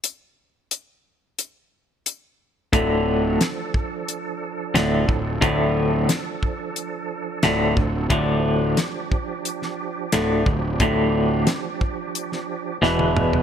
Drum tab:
HH |x---x---x---x---|x---x---x---x---|x---x---x---x---|x---x---x---x---|
SD |----------------|----o-------o---|----o-------o---|----o----o--o---|
T1 |----------------|----------------|----------------|----------------|
T2 |----------------|----------------|----------------|----------------|
FT |----------------|----------------|----------------|----------------|
BD |----------------|o-----o-------o-|o-----o-------o-|o-----o-------o-|

HH |x---x---x-------|
SD |----o----o--o---|
T1 |-------------o--|
T2 |--------------o-|
FT |---------------o|
BD |o-----o---------|